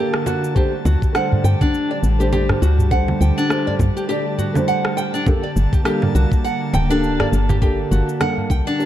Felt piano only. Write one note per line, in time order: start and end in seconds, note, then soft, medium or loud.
0.00 0.52 A#3 medium
0.00 0.53 D4 medium
0.00 0.53 G4 medium
0.00 0.54 A4 medium
0.55 0.70 A3 medium
0.55 0.70 D4 medium
0.55 0.71 G4 medium
0.55 0.71 C5 loud
1.13 2.16 G3 medium
1.13 2.15 A3 medium
1.13 2.15 D4 medium
1.17 2.17 C5 medium
2.19 2.45 A3 medium
2.19 2.45 D4 medium
2.19 2.45 G4 medium
2.19 2.46 C5 medium
2.49 2.60 A3 medium
2.49 2.60 D4 medium
2.49 2.60 G4 medium
2.49 2.61 C5 medium
2.91 3.47 G3 medium
2.91 3.47 A3 medium
2.91 3.47 D4 medium
2.91 3.48 C5 medium
3.49 4.05 A3 medium
3.49 4.06 D4 medium
3.49 4.06 G4 medium
3.49 4.06 C5 medium
4.08 4.50 A3 medium
4.08 4.51 D4 medium
4.08 4.51 G4 medium
4.08 4.52 D5 medium
4.53 5.24 G3 medium
4.53 5.23 A3 medium
4.53 5.23 D4 medium
4.57 5.25 C5 medium
5.26 5.41 A#3 medium
5.26 5.41 D4 medium
5.26 5.41 G4 medium
5.26 5.42 A4 loud
5.83 6.87 G3 medium
5.83 6.85 A#3 medium
5.83 6.86 D4 medium
5.83 6.87 A4 medium
6.89 7.15 A#3 medium
6.89 7.16 D4 medium
6.89 7.16 G4 medium
6.89 7.16 A4 medium
7.19 7.30 A#3 medium
7.19 7.31 D4 medium
7.19 7.31 G4 medium
7.19 7.31 A4 medium
7.61 8.17 A#3 medium
7.61 8.18 D4 medium
7.61 8.18 G4 medium
7.61 8.18 A4 medium
8.20 8.77 G3 medium
8.20 8.76 A#3 medium
8.20 8.76 D4 medium
8.20 8.77 A4 medium
8.78 8.86 A#3 medium
8.78 8.86 D4 medium
8.78 8.86 G4 medium
8.78 8.86 A#4 medium